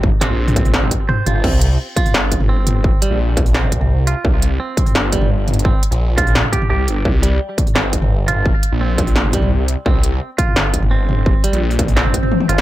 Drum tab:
CC |------------------------------------------------|x-----------------------------------------------|------------------------------------------------|------------------------------------------------|
HH |------x--------o--x--o--------x-----------x-----|------x-----------x--o--------x-----------x-----|------x-----------x--o--------x-----------x-----|------x-----------x--o--------x-----------x-x-x-|
SD |------o-----------------o-----------------------|------------------------o-----------------------|------------------------o-----------------------|------------------------o-----------------------|
T1 |------------------------------------------------|------------------------------------------------|------------------------------------------------|------------------------------------------------|
T2 |o-----o--------o-----o-----o--------o-----o-----|---------------------o-----------o--------o-----|---------------------------o-----o--------------|---------------------o-----------o--------o-----|
BD |o-----------------o-----------o-----------------|o-----------------o-----------o-----------------|o-----------------o-----------o-----------------|o-----------------o-----------o-----------------|

CC |------------------------------------------------|------------------------------------------------|------------------------------------------------|------------------------------------------------|
HH |------x--x--------x--o--------x-----------x-----|------x-----------x--o--------x-----------x-----|------x-----------x--o--------x-----------x-----|------x-----------x-----------x-----------------|
SD |------------------------o-----------------------|------------------------o-----------------------|------------------------o-----------------------|------------------------o-----------------------|
T1 |------------------------------------------------|------------------------------------------------|------------------------------------------------|------------------------------------------------|
T2 |---------------------------o-----o--------------|---------------------o-----------o--------o-----|---------------------------o-----o--------------|---------------------o-----------o--------o-----|
BD |o-----------------o-----------o-----------------|o-----------------o-----------o-----------------|o-----------------o-----------o-----------------|o-----------------o-----------o-----------------|

CC |------------------------------------------------|
HH |------x--x-----o--x--o--------x-----------x-----|
SD |------------------------o--------------------o--|
T1 |------------------------------------o--o--------|
T2 |---------------------o-----o-----o--------------|
BD |o-----------------o-----------o-----------------|